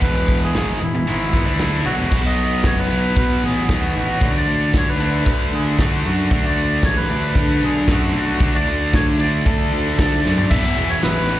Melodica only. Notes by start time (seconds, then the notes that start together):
0.03 B4
0.44 G#4
0.83 E4
1.85 F#4
2.26 D#5
2.66 C#5
2.79 B4
3.17 B4
3.45 G#4
3.72 F#4
3.99 F#4
4.37 D5
4.78 C#5
4.89 B4
5.26 B4
5.54 G#4
5.79 F#4
6.05 F#4
6.45 D5
6.84 C#5
6.97 B4
7.37 B4
7.64 G#4
7.90 F#4
8.18 F#4
8.55 D5
8.95 C#5
9.20 D5
9.45 A4
9.97 D5
10.50 E5
10.89 C#5
11.03 B4